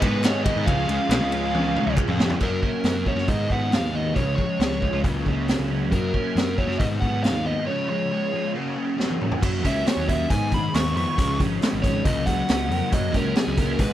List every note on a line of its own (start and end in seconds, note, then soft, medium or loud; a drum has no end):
0.00 0.23 G#2 medium
0.00 0.48 G#2 medium
0.00 0.23 D#3 loud
0.00 0.23 G#3 medium
0.00 0.23 B3 loud
0.00 0.24 D#4 medium
0.00 2.39 G#4 medium
0.00 0.24 G#4 loud
0.00 0.67 B4 medium
0.00 0.23 B4 medium
0.00 0.66 D#5 medium
0.00 0.67 B5 medium
0.00 kick medium
0.00 ride medium
0.04 0.23 B3 loud
0.04 0.24 D#4 loud
0.24 0.43 G#2 medium
0.24 0.45 D#3 medium
0.24 0.44 D#3 medium
0.24 0.44 G#3 medium
0.24 0.44 B3 medium
0.24 0.45 B3 loud
0.24 0.44 D#4 medium
0.24 0.46 D#4 loud
0.24 0.45 G#4 medium
0.24 0.44 C#5 loud
0.24 snare loud
0.24 clap medium
0.24 ride loud
0.44 0.65 G#2 medium
0.44 0.65 D#3 medium
0.44 0.66 D#3 medium
0.44 0.66 G#3 loud
0.44 0.66 B3 medium
0.44 0.66 D#4 medium
0.44 0.67 D#4 medium
0.44 0.66 G#4 loud
0.44 0.65 D#5 medium
0.44 kick medium
0.44 ride medium
0.56 0.65 G#2 medium
0.66 0.85 C#2 loud
0.66 0.87 C#3 loud
0.66 0.88 F3 loud
0.66 0.87 G#3 loud
0.66 0.89 G#3 loud
0.66 0.88 C#4 medium
0.66 0.89 C#4 loud
0.66 0.88 F4 medium
0.66 0.88 G#4 loud
0.66 2.40 C#5 medium
0.66 1.93 F5 loud
0.66 2.40 F5 medium
0.66 kick loud
0.66 ride medium
0.88 0.97 C#2 medium
0.88 1.10 C#3 loud
0.88 1.10 F3 medium
0.88 1.10 G#3 medium
0.88 1.10 C#4 loud
0.88 1.11 C#4 loud
0.88 1.10 F4 medium
0.88 1.11 G#4 loud
0.88 ride medium
1.09 1.20 A#1 medium
1.09 1.31 C#3 medium
1.09 1.31 F3 medium
1.09 1.31 G#3 loud
1.09 1.32 G#3 medium
1.09 1.32 C#4 medium
1.09 1.32 F4 medium
1.09 1.32 G#4 medium
1.09 snare loud
1.09 clap loud
1.09 ride medium
1.20 1.76 C#2 medium
1.32 1.53 C#3 medium
1.32 1.53 F3 medium
1.32 1.53 G#3 medium
1.32 1.54 G#3 loud
1.32 1.53 C#4 loud
1.32 1.54 C#4 medium
1.32 1.53 F4 medium
1.32 1.54 G#4 loud
1.32 ride medium
1.54 1.74 C#3 medium
1.54 1.74 F3 medium
1.54 1.75 G#3 medium
1.54 1.75 C#4 medium
1.54 1.75 C#4 loud
1.54 1.75 F4 medium
1.54 1.76 G#4 loud
1.54 high tom medium
1.75 1.96 C#3 loud
1.75 1.96 F3 medium
1.75 1.96 G#3 loud
1.75 1.96 G#3 medium
1.75 1.96 C#4 loud
1.75 1.97 C#4 loud
1.75 1.97 F4 medium
1.75 1.97 G#4 loud
1.75 mid tom medium
1.87 1.96 C#2 medium
1.97 2.17 C#3 medium
1.97 2.17 F3 medium
1.97 2.17 G#3 medium
1.97 2.18 G#3 loud
1.97 2.18 C#4 medium
1.97 2.18 C#4 loud
1.97 2.18 F4 medium
1.97 2.18 G#4 loud
1.97 kick medium
1.97 clap loud
2.08 2.36 F2 medium
2.08 mid tom medium
2.18 2.39 C#3 medium
2.18 2.39 F3 medium
2.18 2.39 G#3 medium
2.18 2.40 G#3 medium
2.18 2.40 C#4 medium
2.18 2.40 F4 medium
2.18 2.40 G#4 medium
2.18 snare loud
2.30 floor tom loud
2.40 2.60 F#2 medium
2.40 2.61 F#3 medium
2.40 2.84 F#3 medium
2.40 2.61 A#3 medium
2.40 2.62 C#4 medium
2.40 3.10 A#4 medium
2.40 kick medium
2.40 crash medium
2.62 2.82 F#3 medium
2.62 2.83 A#3 medium
2.62 3.29 C#4 medium
2.62 kick medium
2.84 3.12 F#2 medium
2.84 3.04 F#3 medium
2.84 3.29 F#3 medium
2.84 3.04 A#3 medium
2.84 snare medium
2.84 open hi-hat soft
3.06 3.26 F#3 soft
3.06 3.26 A#3 medium
3.06 3.29 F#4 medium
3.06 3.29 C#5 medium
3.06 kick medium
3.16 3.26 F#2 medium
3.16 snare soft
3.28 3.47 G#2 medium
3.28 4.17 G#2 medium
3.28 3.49 D#3 medium
3.28 3.49 B3 medium
3.28 3.50 D#4 medium
3.28 3.52 D#5 medium
3.28 kick medium
3.28 open hi-hat soft
3.50 3.82 G#2 medium
3.50 3.70 D#3 medium
3.50 3.70 B3 medium
3.50 3.93 B3 medium
3.50 3.74 F#5 medium
3.50 kick medium
3.71 3.91 D#3 medium
3.71 4.17 G#3 medium
3.71 3.92 B3 medium
3.71 3.93 D#4 medium
3.71 3.96 F5 medium
3.71 snare loud
3.71 open hi-hat soft
3.82 4.18 D#2 medium
3.93 4.13 D#3 medium
3.93 4.14 B3 medium
3.93 4.16 B3 medium
3.93 4.15 D#5 medium
4.14 4.35 C#2 medium
4.14 5.05 C#3 medium
4.14 4.36 F3 medium
4.14 4.37 G#3 medium
4.14 4.37 C#4 medium
4.14 4.35 C#5 medium
4.14 kick medium
4.14 open hi-hat soft
4.36 4.57 F3 medium
4.36 4.58 G#3 medium
4.36 4.59 G#3 medium
4.36 4.99 C#5 medium
4.36 kick medium
4.59 4.88 C#2 medium
4.59 4.80 F3 medium
4.59 4.80 G#3 medium
4.59 5.04 G#3 medium
4.59 snare loud
4.59 open hi-hat soft
4.72 snare soft
4.82 5.02 F3 soft
4.82 5.02 G#3 medium
4.82 5.05 F4 medium
4.82 kick medium
4.93 5.02 C#2 medium
5.04 5.23 C#2 medium
5.04 5.93 C#3 medium
5.04 5.25 F#3 medium
5.04 5.25 A#3 medium
5.04 5.25 C#4 medium
5.04 kick medium
5.04 open hi-hat soft
5.26 5.54 C#2 medium
5.26 5.46 F#3 medium
5.26 5.47 A#3 medium
5.26 5.69 C#4 medium
5.26 kick medium
5.48 5.68 F#3 medium
5.48 5.92 F#3 medium
5.48 5.69 A#3 medium
5.48 5.69 C#4 medium
5.48 snare medium
5.48 open hi-hat soft
5.59 5.92 C#2 medium
5.69 5.90 F#3 medium
5.69 5.90 A#3 medium
5.69 5.92 C#4 medium
5.91 6.11 F#2 medium
5.91 6.12 F#3 medium
5.91 6.36 F#3 medium
5.91 6.13 A#3 medium
5.91 6.13 C#4 loud
5.91 6.60 A#4 medium
5.91 kick medium
5.91 open hi-hat soft
6.14 6.34 F#3 medium
6.14 6.34 A#3 medium
6.14 6.80 C#4 medium
6.14 kick medium
6.35 6.63 F#2 medium
6.35 6.56 F#3 medium
6.35 6.80 F#3 medium
6.35 6.56 A#3 medium
6.35 snare medium
6.35 open hi-hat soft
6.58 6.78 F#3 medium
6.58 6.78 A#3 medium
6.58 6.81 F#4 medium
6.58 6.79 C#5 medium
6.58 kick medium
6.67 6.77 F#2 medium
6.67 snare soft
6.79 6.98 G#2 medium
6.79 7.68 G#2 medium
6.79 7.00 D#3 medium
6.79 7.01 B3 medium
6.79 7.01 D#4 medium
6.79 6.85 D#5 medium
6.79 kick medium
6.79 open hi-hat soft
7.01 7.33 G#2 medium
7.01 7.21 D#3 medium
7.01 7.22 B3 medium
7.01 7.45 B3 medium
7.01 7.23 F#5 medium
7.01 kick medium
7.22 7.44 D#3 medium
7.22 7.68 G#3 medium
7.22 7.44 B3 medium
7.22 7.44 D#4 medium
7.22 7.46 F5 medium
7.22 snare medium
7.22 open hi-hat soft
7.33 7.52 D#2 medium
7.45 7.65 D#3 medium
7.45 7.65 B3 medium
7.45 7.68 B3 medium
7.45 7.66 D#5 medium
7.67 8.54 C#3 medium
7.67 7.88 F3 medium
7.67 7.88 G#3 medium
7.67 7.89 C#4 medium
7.67 7.88 C#5 medium
7.89 8.09 F3 medium
7.89 8.09 G#3 medium
7.89 8.11 G#3 medium
7.89 8.51 C#5 medium
8.11 8.31 F3 medium
8.11 8.31 G#3 medium
8.11 8.56 G#3 medium
8.33 8.53 F3 medium
8.33 8.54 G#3 medium
8.33 8.56 F4 medium
8.55 9.43 C#3 medium
8.55 8.76 A#3 medium
8.55 8.76 C#4 medium
8.55 8.76 F#4 medium
8.77 8.97 A#3 medium
8.77 9.20 C#4 medium
8.77 8.97 C#4 medium
8.98 9.42 F#3 medium
8.98 9.19 A#3 medium
8.98 9.19 C#4 medium
8.98 9.20 F#4 medium
8.98 snare medium
9.10 high tom soft
9.20 9.40 A#3 medium
9.20 9.41 C#4 soft
9.20 9.43 C#4 medium
9.20 mid tom medium
9.32 floor tom medium
9.41 9.65 F#2 medium
9.41 9.85 F#3 medium
9.41 9.62 A#3 medium
9.41 9.62 C#4 medium
9.41 9.63 F#4 medium
9.41 kick medium
9.41 crash loud
9.63 9.83 C#2 medium
9.63 9.84 A#3 medium
9.63 9.84 C#4 medium
9.63 10.07 C#4 medium
9.63 9.87 E5 medium
9.63 kick medium
9.63 open hi-hat medium
9.85 10.30 F#3 medium
9.85 10.06 A#3 medium
9.85 10.06 C#4 medium
9.85 10.08 C#5 medium
9.85 snare loud
9.85 open hi-hat medium
9.97 10.25 D#2 medium
10.08 10.28 A#3 medium
10.08 10.30 C#4 medium
10.08 10.28 C#4 medium
10.08 10.30 E5 medium
10.08 kick medium
10.08 open hi-hat medium
10.29 11.17 G#2 medium
10.29 10.67 G#2 loud
10.29 10.50 D#3 loud
10.29 10.51 B3 loud
10.29 10.51 D#4 loud
10.29 10.51 G#5 medium
10.29 kick medium
10.29 open hi-hat medium
10.52 10.72 D#3 medium
10.52 11.18 G#3 medium
10.52 10.72 B3 medium
10.52 10.75 B5 medium
10.52 kick medium
10.52 open hi-hat soft
10.74 10.96 D#2 medium
10.74 10.94 D#3 medium
10.74 10.94 B3 medium
10.74 11.18 B3 medium
10.74 10.95 C#6 medium
10.74 snare loud
10.74 open hi-hat medium
10.96 11.05 F2 medium
10.96 11.15 D#3 medium
10.96 11.16 B3 medium
10.96 11.18 B4 medium
10.96 11.39 C#6 medium
10.96 open hi-hat medium
11.17 11.41 C#2 medium
11.17 12.06 C#3 medium
11.17 11.37 F3 medium
11.17 11.38 G#3 medium
11.17 11.38 C#4 loud
11.17 kick loud
11.17 open hi-hat medium
11.39 11.58 G#1 medium
11.39 11.59 F3 medium
11.39 11.59 G#3 medium
11.39 11.83 C#4 medium
11.39 kick medium
11.39 open hi-hat soft
11.61 11.81 F3 medium
11.61 11.81 G#3 medium
11.61 12.06 G#3 medium
11.61 snare loud
11.61 open hi-hat medium
11.73 12.00 G#1 medium
11.82 12.03 F3 medium
11.82 12.03 G#3 medium
11.82 12.05 C#4 medium
11.82 12.04 C#5 medium
11.82 kick medium
11.82 open hi-hat medium
12.05 12.42 C#2 medium
12.05 12.93 C#3 medium
12.05 12.25 F#3 loud
12.05 12.26 A#3 loud
12.05 12.26 C#4 medium
12.05 12.26 D#5 medium
12.05 kick loud
12.05 open hi-hat medium
12.26 12.46 F#3 medium
12.26 12.93 F#3 medium
12.26 12.47 A#3 medium
12.26 12.90 F#5 medium
12.26 kick medium
12.26 open hi-hat soft
12.48 12.72 C#2 medium
12.48 12.68 F#3 medium
12.48 12.68 A#3 medium
12.48 12.93 C#4 medium
12.48 snare loud
12.48 open hi-hat medium
12.70 12.80 F2 medium
12.70 12.90 F#3 medium
12.70 12.90 A#3 medium
12.70 12.93 A#4 medium
12.70 open hi-hat medium
12.91 13.14 F#2 medium
12.91 13.12 F#3 medium
12.91 13.34 F#3 medium
12.91 13.13 A#3 medium
12.91 13.13 C#4 loud
12.91 13.14 D#5 medium
12.91 kick loud
12.91 open hi-hat medium
13.14 13.32 C#2 medium
13.14 13.34 F#3 medium
13.14 13.34 A#3 medium
13.14 13.57 C#4 medium
13.14 13.36 A#4 medium
13.14 kick medium
13.14 open hi-hat medium
13.35 13.79 F#3 medium
13.35 13.55 F#3 medium
13.35 13.55 A#3 medium
13.35 13.57 G#4 medium
13.35 snare loud
13.35 open hi-hat medium
13.47 13.75 C#2 medium
13.57 13.77 F#3 medium
13.57 13.77 A#3 medium
13.57 13.80 C#4 medium
13.57 13.80 A#4 medium
13.57 kick medium
13.57 open hi-hat medium
13.78 13.93 G#2 loud
13.78 13.93 G#2 medium
13.78 13.93 D#3 medium
13.78 13.93 B3 loud
13.78 13.93 D#4 loud
13.78 13.93 B4 medium
13.78 kick loud
13.78 open hi-hat medium